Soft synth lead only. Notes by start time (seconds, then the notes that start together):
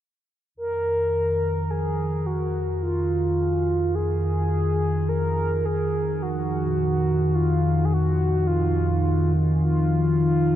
0.57 A#4
1.70 G#4
2.26 F#4
2.83 F4
3.95 G#4
5.09 A#4
5.65 G#4
6.22 F#4
7.35 F4
7.85 G#4
7.93 F#4
8.47 F4
9.61 F4